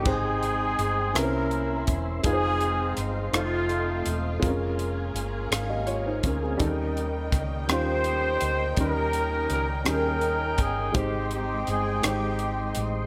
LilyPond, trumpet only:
\new Staff \with { instrumentName = "Trumpet" } { \time 6/8 \key aes \major \tempo 4. = 55 aes'4. bes'4 r8 | aes'4 r8 f'4 r8 | r2. | r4. c''4. |
bes'4 bes'8 bes'4 aes'8 | g'8 g'8 aes'8 g'4 r8 | }